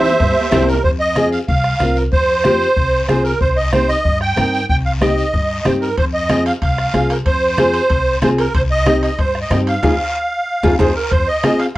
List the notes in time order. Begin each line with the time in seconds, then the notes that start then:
Already playing: E2 C4 E4 G4 C5 E5
0.04 short guiro
0.10 low timbale
0.20 G2, bombo low, cowbell, high conga, low timbale, long guiro
0.31 low timbale
0.41 low timbale
0.51 C2 C4 E4 G4 C5, bombo rim, cowbell, high conga, low conga, low timbale, short guiro
0.63 low timbale
0.68 A#4, short guiro
0.73 low timbale
0.84 F2 C5, bombo low, high conga, long guiro
1.00 D#5
1.16 C4 F4 G#4, bombo rim, high conga, short guiro
1.32 F5, short guiro
1.48 C2 F5, bombo low, high conga, long guiro
1.64 bombo rim
1.80 C2 C4 F4 A#4, bombo rim, high conga, short guiro
1.96 A#4, short guiro
2.12 F2 C5, bombo low, high conga, long guiro
2.44 C4 F4 G4, bombo rim, high conga, short guiro
2.61 short guiro
2.77 C2, bombo low, high conga, long guiro
3.08 C2 C4 F4 G#4 C5, bombo rim, high conga, short guiro
3.25 A#4, short guiro
3.40 C2 C5, bombo low, high conga, long guiro
3.57 D#5
3.72 C4 D#4 G4 C5, bombo rim, high conga, short guiro
3.89 D#5, short guiro
4.05 G2, bombo low, high conga, long guiro
4.21 G5, bombo rim
4.36 G2 C4 D#4 A#4, bombo rim, high conga, short guiro
4.54 short guiro
4.69 C2 G5, bombo low, high conga, long guiro
4.85 F5
5.01 C4 D#4 G4 D#5, bombo rim, high conga, short guiro
5.18 short guiro
5.34 G2, bombo low, high conga, long guiro
5.65 G2 C4 D#4 G4 C5, bombo rim, high conga, short guiro
5.81 A#4, short guiro
5.97 F2 C5, bombo low, high conga, high timbale, long guiro
6.14 D#5
6.29 C4 F4 G#4, bombo rim, high conga, high timbale, short guiro
6.46 F5, high timbale, short guiro
6.62 C2 F5, bombo low, high conga, high timbale, long guiro
6.78 bombo rim
6.94 C2 C4 F4 G#4, bombo rim, high conga, high timbale, short guiro
7.10 A#4, high timbale, short guiro
7.26 F2 C5, bombo low, high conga, high timbale, long guiro
7.58 C4 F4 G#4, bombo rim, high conga, high timbale, short guiro
7.74 high timbale, short guiro
7.90 C2, bombo low, high conga, high timbale, long guiro
8.22 C2 C4 F4 G#4 C5, bombo rim, high conga, high timbale, low timbale, short guiro
8.38 A#4, high timbale, short guiro
8.54 C2 C5, bombo low, high conga, high timbale, long guiro
8.71 D#5
8.86 C4 D#4 G4, bombo rim, high conga, high timbale, short guiro
9.03 D#5, high timbale, short guiro
9.19 G2 C5, bombo low, high conga, high timbale, long guiro
9.35 bombo rim
9.41 D#5
9.50 G2 C4 D#4 G4, bombo rim, high conga, high timbale, low timbale, short guiro
9.67 F5, high timbale, short guiro
9.83 F2 D#4 F4 G#4, bombo low, high conga, high timbale, long guiro
10.63 F2 D#4 F4 G#4, bombo low, high conga, high timbale, long guiro
10.79 F2 D#4 F4 G#4 C5, bombo low, high conga, high timbale, long guiro
10.95 A#4
11.11 F2 C5, bombo low, high conga, high timbale, long guiro
11.28 D#5
11.43 C4 F4 G#4, bombo rim, high conga, high timbale, short guiro
11.59 F5, high timbale, short guiro